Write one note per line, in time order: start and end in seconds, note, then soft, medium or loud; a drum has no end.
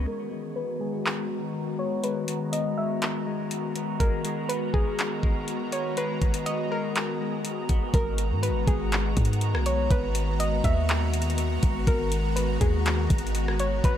0.06 7.90 D#3 medium
0.06 0.30 G#3 medium
0.06 7.90 G#3 medium
0.06 7.90 B3 medium
0.06 7.90 F#4 medium
0.06 0.53 A#4 medium
0.06 7.90 A#5 medium
0.31 0.79 G#3 medium
0.56 1.77 B3 medium
0.56 0.79 B4 medium
0.80 1.28 G#3 medium
0.80 1.75 G#4 medium
1.06 clap loud
1.30 2.02 G#3 medium
1.79 2.51 B3 medium
1.79 2.02 C#5 medium
2.03 2.27 G#3 medium
2.03 2.50 B4 loud
2.03 closed hi-hat medium
2.28 2.77 G#3 medium
2.28 closed hi-hat medium
2.53 3.74 B3 medium
2.53 2.76 D#5 medium
2.53 closed hi-hat medium
2.78 3.25 G#3 medium
2.78 3.47 E5 medium
3.02 clap loud
3.02 closed hi-hat medium
3.26 3.99 G#3 medium
3.51 closed hi-hat medium
3.76 4.49 B3 medium
3.76 closed hi-hat medium
4.00 4.23 G#3 medium
4.00 7.90 G#3 medium
4.00 7.90 B3 medium
4.00 7.90 F#4 medium
4.00 4.46 A#4 loud
4.00 5.95 A#4 medium
4.00 kick loud
4.00 closed hi-hat medium
4.24 4.73 G#3 medium
4.24 closed hi-hat medium
4.49 5.71 B3 medium
4.49 4.72 B4 medium
4.49 closed hi-hat medium
4.74 5.21 G#3 medium
4.74 5.68 G#4 medium
4.74 kick medium
4.99 clap loud
4.99 closed hi-hat medium
5.23 5.96 G#3 medium
5.23 kick medium
5.48 closed hi-hat medium
5.72 6.45 B3 medium
5.72 5.96 C#5 medium
5.72 closed hi-hat medium
5.97 6.21 G#3 medium
5.97 7.92 G#4 medium
5.97 6.43 B4 loud
5.97 closed hi-hat medium
6.22 6.69 G#3 medium
6.22 kick medium
6.22 closed hi-hat medium
6.34 closed hi-hat medium
6.46 7.68 B3 medium
6.46 6.69 D#5 medium
6.46 closed hi-hat medium
6.71 7.19 G#3 medium
6.71 7.41 A#4 loud
6.96 clap loud
6.96 closed hi-hat medium
7.21 7.94 G#3 medium
7.45 closed hi-hat medium
7.69 7.94 B3 medium
7.69 kick medium
7.69 closed hi-hat medium
7.94 8.32 G#1 loud
7.94 13.98 D#3 medium
7.94 13.98 G#3 medium
7.94 13.98 B3 medium
7.94 13.98 F#4 medium
7.94 8.40 A#4 loud
7.94 13.98 F#5 medium
7.94 13.98 A#5 medium
7.94 kick loud
7.94 closed hi-hat medium
8.18 closed hi-hat loud
8.31 8.51 G#2 loud
8.43 8.66 B4 medium
8.43 closed hi-hat medium
8.49 8.67 G#1 loud
8.67 9.15 G#1 loud
8.67 9.62 G#4 medium
8.67 kick loud
8.67 closed hi-hat medium
8.92 clap loud
8.92 closed hi-hat medium
9.17 9.55 G#2 loud
9.17 kick loud
9.17 closed hi-hat medium
9.25 closed hi-hat medium
9.33 closed hi-hat soft
9.41 closed hi-hat medium
9.54 9.89 B1 loud
9.54 cross-stick loud
9.66 9.89 C#5 medium
9.66 closed hi-hat medium
9.91 10.61 G#1 loud
9.91 10.37 B4 loud
9.91 kick loud
9.91 closed hi-hat medium
10.15 closed hi-hat loud
10.40 10.63 D#5 medium
10.40 closed hi-hat medium
10.64 11.59 D#2 loud
10.64 11.34 E5 medium
10.64 kick loud
10.64 closed hi-hat medium
10.89 clap loud
10.89 closed hi-hat medium
11.14 closed hi-hat medium
11.22 closed hi-hat medium
11.30 closed hi-hat soft
11.38 closed hi-hat medium
11.63 11.86 G#1 loud
11.63 kick loud
11.63 closed hi-hat medium
11.87 12.58 G#1 loud
11.87 12.33 A#4 loud
11.87 kick loud
11.87 closed hi-hat medium
12.12 closed hi-hat loud
12.36 12.59 B4 medium
12.36 closed hi-hat medium
12.61 13.08 D#2 loud
12.61 13.55 G#4 medium
12.61 kick loud
12.61 closed hi-hat medium
12.86 clap loud
12.86 closed hi-hat medium
13.10 13.81 G#1 loud
13.10 kick loud
13.10 closed hi-hat medium
13.18 closed hi-hat medium
13.27 closed hi-hat soft
13.35 closed hi-hat medium
13.48 cross-stick medium
13.59 13.83 C#5 medium
13.59 closed hi-hat medium
13.84 13.98 G#1 loud
13.84 13.98 B4 loud
13.84 kick loud
13.84 closed hi-hat medium